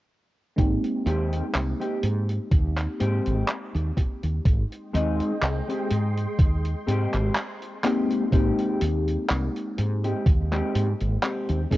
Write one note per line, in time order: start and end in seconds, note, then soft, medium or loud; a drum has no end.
0.56 0.76 G#1 medium
0.56 7.74 G#3 medium
0.56 7.74 A#3 medium
0.56 7.75 C4 medium
0.56 7.75 D#4 medium
0.56 7.76 G4 medium
0.56 kick loud
0.56 closed hi-hat medium
0.84 closed hi-hat medium
1.06 1.40 D#2 medium
1.06 1.44 G#3 loud
1.06 1.44 C4 medium
1.06 1.44 G4 loud
1.06 closed hi-hat medium
1.33 closed hi-hat medium
1.55 1.73 C2 medium
1.55 clap loud
1.55 closed hi-hat medium
1.80 2.03 G#3 medium
1.80 2.03 C4 medium
1.80 2.03 G4 medium
1.80 closed hi-hat soft
2.03 2.38 G#2 medium
2.03 closed hi-hat medium
2.29 muted clean electric guitar stroke soft
2.29 closed hi-hat medium
2.52 2.86 D#2 medium
2.52 kick loud
2.52 closed hi-hat medium
2.78 clap soft
2.78 closed hi-hat medium
3.00 3.18 G#2 medium
3.00 3.48 G#3 loud
3.00 3.49 C4 loud
3.00 3.49 G4 loud
3.00 closed hi-hat medium
3.26 3.42 G#1 medium
3.26 closed hi-hat medium
3.48 clap loud
3.48 closed hi-hat medium
3.74 3.90 D#2 medium
3.74 closed hi-hat soft
3.97 muted clean electric guitar stroke medium
3.97 kick medium
3.97 closed hi-hat medium
4.23 4.38 D#2 medium
4.23 muted clean electric guitar stroke soft
4.23 closed hi-hat medium
4.45 4.63 G#1 medium
4.45 8.29 G#3 medium
4.45 8.29 D#5 medium
4.45 8.29 G5 medium
4.45 7.81 C6 medium
4.45 kick loud
4.45 closed hi-hat medium
4.72 closed hi-hat soft
4.93 5.19 D#2 loud
4.93 5.31 G#3 loud
4.93 5.31 C4 medium
4.93 5.31 D#4 loud
4.93 closed hi-hat loud
5.20 muted fretless electric bass stroke soft
5.20 closed hi-hat medium
5.42 5.60 C2 medium
5.42 clap loud
5.42 closed hi-hat medium
5.68 5.90 G#3 medium
5.68 5.91 C4 medium
5.68 5.91 G4 medium
5.68 closed hi-hat medium
5.91 6.25 G#2 medium
5.91 closed hi-hat loud
6.16 muted clean electric guitar stroke soft
6.16 closed hi-hat medium
6.39 6.73 D#2 medium
6.39 kick loud
6.39 closed hi-hat medium
6.65 closed hi-hat medium
6.87 7.05 G#2 medium
6.87 7.36 G#3 loud
6.87 7.36 C4 loud
6.87 7.36 G4 loud
6.87 closed hi-hat medium
7.13 7.29 G#1 medium
7.13 clap soft
7.13 closed hi-hat medium
7.35 clap loud
7.35 closed hi-hat medium
7.62 closed hi-hat soft
7.83 8.23 G#3 medium
7.83 8.24 G#3 medium
7.83 8.23 A#3 medium
7.83 8.24 C4 medium
7.83 8.24 D#4 medium
7.83 8.24 G4 loud
7.83 8.24 G4 medium
7.83 8.32 C6 medium
7.83 clap medium
7.83 closed hi-hat loud
8.11 closed hi-hat medium
8.31 8.50 G#1 medium
8.31 11.65 G#3 medium
8.31 8.81 G#3 loud
8.31 11.66 A#3 medium
8.31 8.81 C4 loud
8.31 11.66 C4 medium
8.31 11.66 D#4 medium
8.31 8.81 G4 loud
8.31 11.67 G4 loud
8.31 kick loud
8.31 closed hi-hat medium
8.59 closed hi-hat medium
8.81 9.15 D#2 loud
8.81 closed hi-hat loud
9.07 closed hi-hat medium
9.29 9.47 C2 loud
9.29 muted clean electric guitar stroke soft
9.29 clap loud
9.29 closed hi-hat medium
9.56 closed hi-hat medium
9.78 10.12 G#2 medium
9.78 muted clean electric guitar stroke medium
9.78 closed hi-hat medium
10.04 10.26 G#3 medium
10.04 10.26 C4 medium
10.04 10.27 G4 medium
10.04 closed hi-hat medium
10.26 10.60 D#2 medium
10.26 kick loud
10.26 closed hi-hat medium
10.51 10.87 G#3 loud
10.51 10.87 C4 medium
10.51 10.88 G4 loud
10.51 clap soft
10.51 closed hi-hat medium
10.75 10.92 G#2 medium
10.75 closed hi-hat medium
11.00 11.16 G#1 medium
11.00 closed hi-hat medium
11.22 11.60 G#3 medium
11.22 11.60 C4 medium
11.22 11.60 G4 medium
11.22 clap loud
11.22 closed hi-hat medium
11.49 11.64 D#2 medium
11.49 closed hi-hat medium
11.70 11.77 G#3 medium
11.70 11.77 A#3 medium
11.70 11.77 C4 medium
11.70 11.77 D#4 medium
11.70 11.77 G#4 medium
11.70 kick medium
11.70 closed hi-hat medium